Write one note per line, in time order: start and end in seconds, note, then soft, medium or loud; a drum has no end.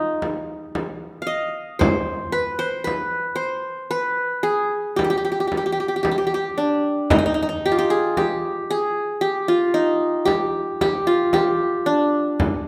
0.00 1.25 D#4 medium
0.00 0.48 F4 medium
0.22 frame drum medium
0.75 frame drum medium
1.22 2.11 F5 medium
1.27 2.22 D#5 medium
1.79 2.38 C5 medium
1.79 frame drum medium
2.32 2.65 B4 medium
2.59 2.90 C5 medium
2.84 3.90 B4 medium
2.84 frame drum medium
3.36 3.97 C5 medium
3.91 5.00 B4 medium
4.43 5.02 G#4 medium
4.96 5.04 G4 medium
4.96 frame drum medium
5.04 5.10 G4 medium
5.10 5.17 G4 medium
5.17 5.24 G4 medium
5.25 5.31 G4 medium
5.32 5.40 G4 medium
5.40 5.47 G4 medium
5.47 5.57 G4 soft
5.52 frame drum medium
5.57 5.65 G4 medium
5.66 5.72 G4 medium
5.72 5.80 G4 medium
5.80 5.88 G4 soft
5.88 5.96 G4 medium
5.96 6.02 G4 medium
6.03 6.11 G4 medium
6.03 frame drum medium
6.11 6.17 G4 medium
6.18 6.26 G4 medium
6.27 6.34 G4 medium
6.34 7.60 G4 medium
6.58 7.17 D4 medium
7.10 7.18 D#4 medium
7.10 frame drum medium
7.19 7.25 D#4 medium
7.26 7.34 D#4 medium
7.34 7.42 D#4 medium
7.42 7.48 D#4 medium
7.49 8.93 D#4 medium
7.66 7.78 G4 medium
7.72 9.06 F4 medium
7.79 7.96 G4 medium
7.90 8.23 G#4 medium
8.17 8.76 G4 medium
8.17 frame drum medium
8.70 9.27 G#4 medium
9.21 10.25 G4 medium
9.48 10.83 F4 medium
9.74 11.18 D#4 medium
10.25 10.81 G4 medium
10.25 frame drum medium
10.81 11.33 G4 medium
10.81 frame drum medium
11.07 12.41 F4 medium
11.33 12.59 G4 medium
11.33 frame drum medium
11.86 12.68 D4 medium
12.40 frame drum medium